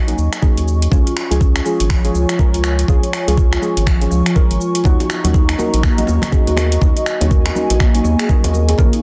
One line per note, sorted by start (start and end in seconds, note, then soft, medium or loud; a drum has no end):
0.00 0.14 A#1 medium
0.00 0.88 F#4 medium
0.00 0.88 D#5 medium
0.00 0.89 G#5 medium
0.00 8.74 C#6 medium
0.07 0.28 F#3 medium
0.07 0.28 A#3 medium
0.07 0.28 C#4 medium
0.07 0.28 D#4 medium
0.07 0.28 F#4 medium
0.07 closed hi-hat soft
0.07 shaker soft
0.18 0.29 D#2 loud
0.18 shaker medium
0.33 finger snap medium
0.33 closed hi-hat soft
0.33 shaker soft
0.42 0.89 F#3 medium
0.42 0.89 A#3 medium
0.42 0.89 C#4 medium
0.42 0.89 D#4 medium
0.42 0.89 G#4 medium
0.42 kick loud
0.42 shaker medium
0.57 0.87 D#2 medium
0.57 closed hi-hat soft
0.57 shaker soft
0.68 shaker medium
0.82 closed hi-hat medium
0.82 shaker soft
0.91 1.02 C#2 medium
0.91 1.07 F3 medium
0.91 1.07 G#3 medium
0.91 1.07 C#4 medium
0.91 1.05 C#4 medium
0.91 1.07 F4 medium
0.91 4.81 F4 medium
0.91 1.07 G#4 loud
0.91 4.81 C#5 medium
0.91 4.81 G#5 medium
0.91 kick loud
0.91 shaker medium
1.06 1.12 F4 medium
1.06 closed hi-hat soft
1.06 shaker soft
1.17 finger snap medium
1.17 shaker medium
1.31 1.61 C#2 medium
1.31 1.63 F3 medium
1.31 1.63 G#3 medium
1.31 1.63 C#4 medium
1.31 1.63 F4 medium
1.31 1.63 G#4 loud
1.31 closed hi-hat soft
1.31 shaker soft
1.40 1.55 C#4 loud
1.40 kick loud
1.40 shaker medium
1.56 finger snap medium
1.56 closed hi-hat soft
1.56 shaker soft
1.65 2.01 F3 medium
1.65 2.01 G#3 medium
1.65 2.01 C#4 medium
1.65 1.78 F4 loud
1.65 2.01 F4 medium
1.65 2.01 G#4 medium
1.65 shaker loud
1.80 2.10 G#1 medium
1.80 closed hi-hat soft
1.80 shaker soft
1.90 1.98 F3 loud
1.90 finger snap medium
1.90 kick loud
1.90 shaker medium
2.04 2.25 F3 medium
2.04 2.25 G#3 medium
2.04 2.25 C#4 medium
2.04 2.25 F4 medium
2.04 2.25 G#4 medium
2.04 2.13 C#5 medium
2.04 closed hi-hat soft
2.04 shaker soft
2.15 2.25 C#2 medium
2.15 shaker medium
2.29 2.35 F4 medium
2.29 finger snap medium
2.29 closed hi-hat medium
2.29 shaker soft
2.39 2.86 F3 medium
2.39 2.86 G#3 medium
2.39 2.86 C#4 medium
2.39 2.86 F4 medium
2.39 2.86 A#4 medium
2.39 kick loud
2.39 shaker medium
2.54 2.84 C#2 medium
2.54 2.62 F4 loud
2.54 closed hi-hat soft
2.54 shaker soft
2.64 finger snap medium
2.64 shaker medium
2.78 2.87 F4 medium
2.78 closed hi-hat medium
2.78 shaker soft
2.88 2.99 C#2 medium
2.88 3.04 F3 medium
2.88 3.04 G#3 medium
2.88 3.04 C#4 medium
2.88 3.04 F4 medium
2.88 3.04 G#4 loud
2.88 kick loud
2.88 shaker medium
3.03 3.12 C#5 medium
3.03 closed hi-hat soft
3.03 shaker soft
3.13 finger snap medium
3.13 shaker medium
3.28 3.58 C#2 medium
3.28 3.60 F3 medium
3.28 3.60 G#3 medium
3.28 3.60 C#4 medium
3.28 3.60 F4 medium
3.28 3.60 G#4 loud
3.28 closed hi-hat medium
3.28 shaker soft
3.37 3.50 F4 medium
3.37 kick loud
3.37 shaker medium
3.52 3.60 F4 loud
3.52 finger snap medium
3.52 closed hi-hat soft
3.52 shaker soft
3.61 3.98 F3 medium
3.61 3.98 G#3 medium
3.61 3.98 C#4 medium
3.61 3.75 F4 medium
3.61 3.98 F4 medium
3.61 3.98 G#4 medium
3.61 shaker medium
3.77 4.07 G#1 medium
3.77 closed hi-hat medium
3.77 shaker soft
3.86 4.00 F3 medium
3.86 finger snap medium
3.86 kick loud
3.86 shaker medium
4.01 4.22 F3 medium
4.01 4.22 G#3 medium
4.01 4.22 C#4 medium
4.01 4.22 F4 medium
4.01 4.22 G#4 medium
4.01 closed hi-hat soft
4.01 shaker soft
4.11 4.22 C#2 medium
4.11 4.24 F3 loud
4.11 shaker medium
4.26 4.34 F4 medium
4.26 finger snap medium
4.26 closed hi-hat medium
4.26 shaker soft
4.36 4.83 F3 loud
4.36 4.83 G#3 medium
4.36 4.83 C#4 medium
4.36 4.83 F4 medium
4.36 4.83 A#4 loud
4.36 kick loud
4.36 shaker medium
4.50 4.58 G#1 loud
4.50 closed hi-hat soft
4.50 shaker soft
4.60 4.73 F4 medium
4.60 shaker medium
4.75 4.84 F4 medium
4.75 closed hi-hat medium
4.75 shaker soft
4.84 4.96 D#2 medium
4.84 5.00 F#3 medium
4.84 5.00 A#3 medium
4.84 5.00 C#4 medium
4.84 5.00 D#4 medium
4.84 4.98 D#4 medium
4.84 5.00 F#4 loud
4.84 8.75 F#4 medium
4.84 8.75 D#5 medium
4.84 6.80 A#5 medium
4.84 kick loud
4.84 muted conga soft
4.84 low conga medium
4.84 shaker medium
4.99 5.05 F#4 medium
4.99 closed hi-hat soft
4.99 low bongo medium
4.99 shaker soft
5.10 finger snap medium
5.10 shaker medium
5.24 5.54 D#2 medium
5.24 5.56 F#3 medium
5.24 5.56 A#3 medium
5.24 5.56 C#4 medium
5.24 5.56 D#4 medium
5.24 5.56 F#4 loud
5.24 closed hi-hat medium
5.24 muted conga soft
5.24 high conga medium
5.24 low conga medium
5.24 shaker soft
5.34 5.48 D#4 loud
5.34 kick loud
5.34 low bongo medium
5.34 shaker soft
5.49 finger snap medium
5.49 closed hi-hat soft
5.49 shaker soft
5.58 5.94 F#3 medium
5.58 5.94 A#3 medium
5.58 5.94 C#4 medium
5.58 5.94 D#4 medium
5.58 5.94 F#4 medium
5.58 5.72 A#4 loud
5.58 low bongo medium
5.58 muted conga soft
5.58 high conga loud
5.58 shaker medium
5.74 6.04 A#1 medium
5.74 closed hi-hat medium
5.74 shaker soft
5.83 5.91 A#3 medium
5.83 finger snap medium
5.83 kick loud
5.83 high bongo medium
5.83 shaker soft
5.97 6.18 F#3 medium
5.97 6.18 A#3 medium
5.97 6.18 C#4 medium
5.97 6.18 D#4 medium
5.97 6.18 F#4 medium
5.97 6.07 D#5 medium
5.97 closed hi-hat soft
5.97 low bongo medium
5.97 muted conga soft
5.97 shaker soft
6.07 6.19 D#2 medium
6.07 high bongo medium
6.07 shaker medium
6.22 6.28 F#4 medium
6.22 finger snap medium
6.22 closed hi-hat medium
6.22 low bongo medium
6.22 high conga loud
6.22 low conga medium
6.22 shaker soft
6.32 6.79 F#3 medium
6.32 6.79 A#3 medium
6.32 6.79 C#4 medium
6.32 6.79 D#4 medium
6.32 6.79 G#4 medium
6.32 kick loud
6.32 muted conga medium
6.32 shaker soft
6.47 6.78 D#2 medium
6.47 6.57 F#4 loud
6.47 closed hi-hat soft
6.47 high conga medium
6.47 shaker soft
6.57 6.70 A#4 medium
6.57 finger snap medium
6.57 low bongo loud
6.57 shaker medium
6.72 6.81 F#4 medium
6.72 closed hi-hat medium
6.72 shaker soft
6.81 6.92 D#2 loud
6.81 6.97 F#3 medium
6.81 6.97 A#3 medium
6.81 6.97 C#4 medium
6.81 6.97 D#4 medium
6.81 6.97 F#4 loud
6.81 8.76 G#5 medium
6.81 kick loud
6.81 high bongo medium
6.81 low bongo medium
6.81 muted conga soft
6.81 low conga medium
6.81 shaker medium
6.96 7.05 D#5 medium
6.96 closed hi-hat soft
6.96 shaker soft
7.06 finger snap medium
7.06 shaker medium
7.20 7.51 D#2 medium
7.20 7.53 F#3 medium
7.20 7.53 A#3 medium
7.20 7.53 C#4 medium
7.20 7.53 D#4 medium
7.20 7.53 F#4 loud
7.20 closed hi-hat medium
7.20 low bongo medium
7.20 muted conga soft
7.20 high conga medium
7.20 low conga medium
7.20 shaker soft
7.30 7.45 A#4 medium
7.30 kick loud
7.30 shaker soft
7.45 7.55 F#4 loud
7.45 finger snap medium
7.45 closed hi-hat soft
7.45 low bongo medium
7.45 shaker soft
7.55 7.91 F#3 medium
7.55 7.91 A#3 medium
7.55 7.91 C#4 medium
7.55 7.91 D#4 medium
7.55 7.91 F#4 medium
7.55 7.68 A#4 medium
7.55 muted conga soft
7.55 high conga medium
7.55 shaker medium
7.70 8.00 A#1 medium
7.70 closed hi-hat medium
7.70 high bongo medium
7.70 shaker soft
7.80 7.94 A#3 loud
7.80 finger snap medium
7.80 kick loud
7.80 low bongo medium
7.80 shaker soft
7.95 8.15 F#3 medium
7.95 8.15 A#3 medium
7.95 8.15 C#4 medium
7.95 8.15 D#4 medium
7.95 8.15 F#4 medium
7.95 closed hi-hat soft
7.95 muted conga soft
7.95 shaker soft
8.04 8.15 D#2 loud
8.04 8.18 A#3 loud
8.04 low bongo medium
8.04 shaker medium
8.19 8.28 G#4 loud
8.19 finger snap medium
8.19 closed hi-hat medium
8.19 shaker soft
8.29 8.76 F#3 medium
8.29 8.76 A#3 medium
8.29 8.76 C#4 medium
8.29 8.76 D#4 medium
8.29 8.76 G#4 medium
8.29 8.43 A#4 medium
8.29 kick loud
8.29 muted conga soft
8.29 high conga medium
8.29 shaker soft
8.44 8.74 D#2 medium
8.44 closed hi-hat soft
8.44 low bongo medium
8.44 shaker soft
8.53 8.67 A#4 medium
8.53 high conga medium
8.53 shaker medium
8.68 8.78 G#4 medium
8.68 closed hi-hat medium
8.68 low bongo medium
8.68 shaker soft
8.78 8.89 A#1 loud
8.78 8.91 A#3 medium
8.78 8.94 A#3 medium
8.78 8.94 C#4 medium
8.78 8.94 F4 medium
8.78 8.94 G#4 medium
8.78 9.02 G#4 medium
8.78 8.94 A#4 loud
8.78 9.02 F5 medium
8.78 9.02 A#5 medium
8.78 9.02 C#6 medium
8.78 kick loud
8.78 muted conga medium
8.78 low conga medium
8.78 shaker soft
8.93 8.98 D#4 medium
8.93 closed hi-hat soft
8.93 shaker soft